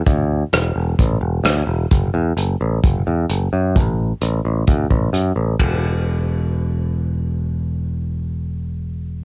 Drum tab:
RD |--------|--------|--------|x-------|
HH |x-x-x-x-|x-x-x-x-|x-x-x-x-|--------|
SD |--r---r-|--------|--------|--------|
BD |o---o---|o---o---|o---oo--|o-------|

RD |--------|
HH |--------|
SD |--------|
BD |--------|